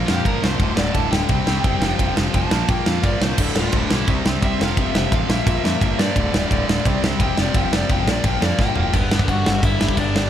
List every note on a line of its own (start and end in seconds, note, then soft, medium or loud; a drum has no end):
0.07 0.20 F2 loud
0.07 0.24 A#2 medium
0.07 0.25 F3 medium
0.07 0.25 A#3 medium
0.07 0.25 G4 medium
0.07 snare loud
0.25 0.36 G1 loud
0.25 0.41 A#2 medium
0.25 0.42 F3 medium
0.25 0.43 A#3 loud
0.25 0.43 A#4 medium
0.25 kick loud
0.25 ride medium
0.42 0.54 C2 medium
0.42 0.59 A#2 medium
0.42 0.60 F3 medium
0.42 0.60 A#3 loud
0.42 0.77 C5 medium
0.42 snare loud
0.59 0.70 D1 medium
0.59 0.77 D2 medium
0.59 0.77 A2 loud
0.59 0.78 D3 loud
0.59 kick loud
0.59 ride medium
0.77 0.89 D1 medium
0.77 0.94 D2 medium
0.77 0.94 A2 loud
0.77 0.95 D3 medium
0.77 0.94 D5 loud
0.77 snare loud
0.95 1.06 D1 medium
0.95 1.11 D2 medium
0.95 1.12 A2 medium
0.95 1.12 D3 medium
0.95 1.11 A5 medium
0.95 kick loud
0.95 ride medium
1.11 1.23 D1 medium
1.11 1.28 D2 medium
1.11 1.29 A2 medium
1.11 1.29 D3 loud
1.11 2.14 G5 loud
1.11 snare loud
1.29 1.40 C2 medium
1.29 1.46 C3 loud
1.29 1.47 G3 loud
1.29 1.47 C4 loud
1.29 kick loud
1.29 ride medium
1.47 1.58 C2 medium
1.47 1.65 C3 medium
1.47 1.65 G3 medium
1.47 1.66 C4 medium
1.47 snare loud
1.64 1.75 F#1 medium
1.64 1.81 C3 medium
1.64 1.82 G3 medium
1.64 1.83 C4 medium
1.64 kick loud
1.64 ride medium
1.82 1.93 F1 medium
1.82 1.97 F2 loud
1.82 1.97 C3 loud
1.82 1.99 F3 loud
1.82 snare loud
1.98 2.10 F1 medium
1.98 2.15 F2 medium
1.98 2.16 C3 medium
1.98 2.16 F3 medium
1.98 kick loud
1.98 ride medium
2.16 2.28 F1 medium
2.16 2.32 F2 medium
2.16 2.33 C3 medium
2.16 2.33 F3 medium
2.16 snare loud
2.34 2.45 F1 medium
2.34 2.51 F2 medium
2.34 2.51 C3 medium
2.34 2.51 F3 medium
2.34 2.69 A5 loud
2.34 kick loud
2.34 ride medium
2.51 2.63 A#1 medium
2.51 2.68 A#2 medium
2.51 2.68 F3 medium
2.51 2.70 A#3 loud
2.51 snare loud
2.68 2.79 A#1 loud
2.68 2.84 A#2 loud
2.68 2.86 F3 loud
2.68 2.86 A#3 loud
2.68 2.86 G5 loud
2.68 kick loud
2.68 ride medium
2.86 2.98 F2 medium
2.86 3.02 A#2 medium
2.86 3.02 F3 medium
2.86 3.03 A#3 medium
2.86 3.04 F5 loud
2.86 snare loud
3.03 3.14 G1 medium
3.03 3.18 A#2 medium
3.03 3.19 F3 loud
3.03 3.19 A#3 medium
3.03 3.23 D5 medium
3.03 kick loud
3.03 ride medium
3.19 3.32 C2 medium
3.19 3.37 A#2 medium
3.19 3.37 F3 loud
3.19 3.37 A#3 loud
3.19 3.39 C5 loud
3.19 snare loud
3.38 3.49 D1 medium
3.38 3.54 D2 medium
3.38 3.55 A2 medium
3.38 3.56 D3 loud
3.38 3.56 A4 medium
3.38 kick loud
3.38 crash loud
3.55 3.67 D1 medium
3.55 3.74 D2 medium
3.55 3.74 A2 loud
3.55 3.75 D3 medium
3.55 snare loud
3.60 3.75 F4 medium
3.72 3.84 D1 medium
3.72 3.90 D2 medium
3.72 3.90 A2 medium
3.72 3.91 D3 medium
3.72 kick loud
3.72 ride medium
3.78 3.94 D4 medium
3.91 4.02 B1 medium
3.91 4.08 D2 medium
3.91 4.08 A2 medium
3.91 4.08 D3 medium
3.91 4.10 E4 loud
3.91 snare loud
4.08 4.19 C2 loud
4.08 4.24 C3 loud
4.08 4.25 G3 loud
4.08 4.26 C4 loud
4.08 kick loud
4.08 ride medium
4.26 4.37 C2 medium
4.26 4.41 C3 medium
4.26 4.42 G3 medium
4.26 4.43 C4 medium
4.26 snare loud
4.42 4.53 C2 medium
4.42 4.59 C3 medium
4.42 4.60 G3 medium
4.42 4.60 C4 medium
4.42 4.61 E5 medium
4.42 kick loud
4.42 ride medium
4.61 4.72 F1 medium
4.61 4.76 F2 loud
4.61 4.78 C3 loud
4.61 4.78 F3 loud
4.61 4.79 F5 loud
4.61 snare loud
4.77 4.88 F1 medium
4.77 4.93 F2 medium
4.77 4.94 C3 medium
4.77 4.94 F3 loud
4.77 kick loud
4.77 ride medium
4.81 4.97 E5 medium
4.95 5.06 F1 medium
4.95 5.13 F2 medium
4.95 5.13 C3 loud
4.95 5.14 F3 medium
4.95 5.14 E5 loud
4.95 snare loud
5.12 5.23 A1 medium
5.12 5.29 F2 medium
5.12 5.29 C3 medium
5.12 5.28 F3 medium
5.12 5.30 F5 medium
5.12 kick loud
5.12 ride medium
5.29 5.40 A#1 medium
5.29 5.45 A#2 medium
5.29 5.47 F3 loud
5.29 5.47 A#3 loud
5.29 5.45 E5 loud
5.29 snare loud
5.46 5.57 A#1 loud
5.46 5.63 A#2 loud
5.46 5.64 F3 loud
5.46 5.64 A#3 loud
5.46 5.63 E5 medium
5.46 kick loud
5.46 ride medium
5.63 5.74 F2 medium
5.63 5.80 A#2 medium
5.63 5.80 F3 medium
5.63 5.81 A#3 medium
5.63 5.80 E5 medium
5.63 snare loud
5.81 5.92 G1 medium
5.81 5.96 A#2 medium
5.81 5.98 F3 medium
5.81 5.98 A#3 medium
5.81 5.99 E5 medium
5.81 kick loud
5.81 ride medium
5.97 6.09 G2 medium
5.97 6.15 A#2 medium
5.97 6.16 F3 medium
5.97 6.16 A#3 loud
5.97 7.00 D5 medium
5.97 snare loud
6.15 6.27 D1 medium
6.15 6.31 D2 loud
6.15 6.32 A2 loud
6.15 6.33 D3 loud
6.15 kick loud
6.15 ride medium
6.32 6.45 D1 loud
6.32 6.50 D2 medium
6.32 6.51 A2 medium
6.32 6.52 D3 medium
6.32 snare loud
6.51 6.62 D1 medium
6.51 6.67 D2 medium
6.51 6.67 A2 medium
6.51 6.68 D3 medium
6.51 kick loud
6.51 ride medium
6.68 6.79 D1 medium
6.68 6.84 D2 medium
6.68 6.85 A2 medium
6.68 6.86 D3 medium
6.68 snare loud
6.85 6.96 C2 loud
6.85 7.02 C3 loud
6.85 7.03 G3 loud
6.85 7.04 C4 loud
6.85 kick loud
6.85 ride medium
7.03 7.13 C2 medium
7.03 7.20 C3 medium
7.03 7.20 G3 medium
7.03 7.21 C4 medium
7.03 snare loud
7.19 7.30 E1 loud
7.19 7.38 C3 medium
7.19 7.38 G3 medium
7.19 7.38 C4 medium
7.19 7.39 G5 loud
7.19 kick loud
7.19 ride medium
7.37 7.49 F1 medium
7.37 7.55 F2 loud
7.37 7.56 C3 loud
7.37 7.57 F3 loud
7.37 7.56 D5 medium
7.37 snare loud
7.54 7.65 F1 medium
7.54 7.73 F2 medium
7.54 7.74 C3 loud
7.54 7.74 F3 loud
7.54 7.73 G5 loud
7.54 kick loud
7.54 ride medium
7.72 7.83 F1 medium
7.72 7.90 F2 medium
7.72 7.90 C3 medium
7.72 7.92 F3 loud
7.72 7.90 D5 loud
7.72 snare loud
7.89 8.08 F1 medium
7.89 8.07 F2 medium
7.89 8.08 C3 medium
7.89 8.08 F3 medium
7.89 8.08 G5 loud
7.89 kick loud
7.89 ride medium
8.08 8.18 A#1 medium
8.08 8.24 A#2 medium
8.08 8.25 F3 medium
8.08 8.25 A#3 loud
8.08 8.25 D5 loud
8.08 snare loud
8.24 8.35 A#1 loud
8.24 8.40 A#2 loud
8.24 8.40 F3 loud
8.24 8.42 A#3 loud
8.24 8.42 G5 loud
8.24 kick loud
8.24 ride medium
8.41 8.52 F2 medium
8.41 8.57 A#2 medium
8.41 8.58 F3 medium
8.41 8.59 A#3 medium
8.41 8.59 D5 loud
8.41 snare loud
8.58 8.70 G1 loud
8.58 8.75 A#2 medium
8.58 8.76 F3 medium
8.58 8.76 A#3 loud
8.58 8.75 G5 loud
8.58 kick loud
8.58 snare medium
8.76 8.88 F1 medium
8.76 8.93 A#2 medium
8.76 8.94 F3 medium
8.76 8.94 A#3 loud
8.76 8.94 G5 loud
8.76 floor tom medium
8.93 9.08 G1 medium
8.93 9.11 G2 loud
8.93 9.11 D3 loud
8.93 9.13 G3 loud
8.93 9.79 B3 medium
8.93 9.27 B3 medium
8.93 9.79 D4 loud
8.93 9.79 G4 loud
8.93 9.30 B4 medium
8.93 kick loud
8.93 crash medium
9.11 9.27 G1 medium
9.11 9.28 G2 medium
9.11 9.28 D3 medium
9.11 9.30 G3 medium
9.11 snare loud
9.19 kick loud
9.28 9.43 G1 medium
9.28 9.46 G2 medium
9.28 9.45 D3 loud
9.28 9.46 G3 medium
9.28 9.63 F#4 medium
9.28 9.62 F#5 loud
9.28 kick loud
9.28 crash medium
9.46 9.61 G1 medium
9.46 9.60 G2 medium
9.46 9.61 D3 medium
9.46 9.63 G3 medium
9.46 snare loud
9.61 9.77 G1 loud
9.61 9.79 G2 loud
9.61 9.79 D3 loud
9.61 9.82 G3 loud
9.61 9.97 E4 medium
9.61 9.97 E5 loud
9.61 kick loud
9.61 crash medium
9.80 9.96 G1 loud
9.80 9.96 G2 medium
9.80 9.97 D3 medium
9.80 9.97 G3 medium
9.80 9.98 B3 medium
9.80 9.97 D4 loud
9.80 10.00 G4 medium
9.80 snare loud
9.88 kick loud
9.97 10.26 G1 medium
9.97 10.14 G2 medium
9.97 10.15 D3 medium
9.97 10.16 G3 loud
9.97 10.30 B3 medium
9.97 10.30 D4 medium
9.97 10.30 G4 medium
9.97 10.30 D5 loud
9.97 kick loud
9.97 crash medium
10.15 10.30 G2 medium
10.15 10.30 D3 medium
10.15 10.30 G3 loud
10.15 snare loud